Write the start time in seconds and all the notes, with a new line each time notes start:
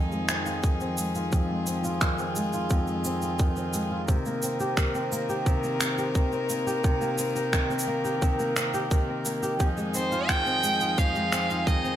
Already playing: F2 D#3 F3 G#3 C4 D#4 F4 G#4
0.12 G#3, shaker
0.29 C4, finger snap, shaker
0.46 F4, shaker
0.63 D#3, kick, shaker
0.81 C4, shaker
0.98 G#3, shaker
1.15 F4, shaker
1.32 F2 F4, kick, shaker
1.50 G#3
1.67 C4, shaker
1.84 F4, shaker
2.01 D#3, finger snap, kick, shaker
2.18 C4, shaker
2.36 G#3, shaker
2.53 F4, shaker
2.70 F2, kick, shaker
2.87 G#3, shaker
3.05 C4, shaker
3.22 F4, shaker
3.39 D#3, kick, shaker
3.56 C4, shaker
3.73 G#3, shaker
3.91 F4
4.08 C3 D#3 C4 A#4, kick, shaker
4.26 A#3, shaker
4.43 C4, shaker
4.60 G4, shaker
4.77 D#3, finger snap, kick, shaker
4.95 C4, shaker
5.12 A#3, shaker
5.29 G4, shaker
5.46 C3, kick, shaker
5.63 A#3, shaker
5.81 C4, finger snap, shaker
5.98 G4, shaker
6.15 D#3, kick, shaker
6.32 C4, shaker
6.49 A#3, shaker
6.67 G4, shaker
6.83 C3 A#3, kick, shaker
7.01 A#3, shaker
7.18 C4, shaker
7.35 G4, shaker
7.53 D#3, finger snap, kick, shaker
7.70 C4, shaker
7.79 shaker
7.87 A#3
8.05 G4, shaker
8.22 C3, kick, shaker
8.39 A#3, shaker
8.56 C4, finger snap, shaker
8.74 G4, shaker
8.91 D#3, kick, shaker
9.08 C4
9.25 A#3, shaker
9.43 G4, shaker
9.60 F2 F3 D#4 G#4, kick, shaker
9.77 G#3, shaker
9.94 C4 C5, shaker
10.12 F4, shaker
10.29 D#3 G5, finger snap, kick, shaker
10.46 C4, shaker
10.63 G#3, shaker
10.80 F4, shaker
10.98 F2 F5, kick, shaker
11.15 G#3, shaker
11.32 C4, finger snap, shaker
11.50 F4, shaker
11.67 D#3 D#5, kick, shaker
11.84 C4, shaker